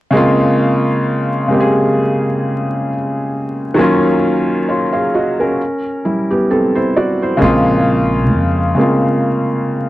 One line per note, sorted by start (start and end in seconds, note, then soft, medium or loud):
0.10 1.17 C#3 loud
0.10 1.18 G#3 loud
0.10 1.19 A#3 loud
0.15 1.20 C4 medium
0.15 1.20 F4 loud
1.48 2.87 C#3 medium
1.48 2.88 G#3 medium
1.48 2.89 A#3 medium
1.52 2.89 C4 medium
1.52 1.59 G4 medium
1.60 2.94 G#4 loud
3.74 4.81 D#3 loud
3.74 4.82 F#3 loud
3.74 4.82 A#3 medium
3.79 4.69 C#4 loud
3.79 4.68 F4 loud
4.69 4.93 F4 medium
4.69 4.93 C#5 medium
4.93 5.13 G#4 soft
4.93 5.12 F5 medium
5.14 5.38 F#4 medium
5.14 5.38 D#5 medium
5.40 5.83 C#4 soft
5.40 5.83 A#4 medium
6.05 6.29 G3 soft
6.05 6.29 E4 medium
6.31 6.50 B3 medium
6.31 6.49 G4 medium
6.51 6.75 C4 medium
6.51 6.74 A4 medium
6.75 6.95 E4 medium
6.75 6.94 C5 medium
6.96 7.20 F#4 medium
6.96 7.20 D5 medium
7.22 7.65 E4 soft
7.22 7.65 C5 medium
7.37 8.44 C#3 medium
7.37 8.45 G#3 medium
7.37 8.46 A#3 medium
7.42 8.33 A#1 loud
7.42 8.46 C4 medium
7.42 8.47 F4 loud
8.33 8.73 F2 medium
8.75 9.89 C#3 medium
8.75 9.89 G#3 medium
8.75 9.89 A#3 medium
8.79 9.89 C4 medium
8.79 9.89 F4 medium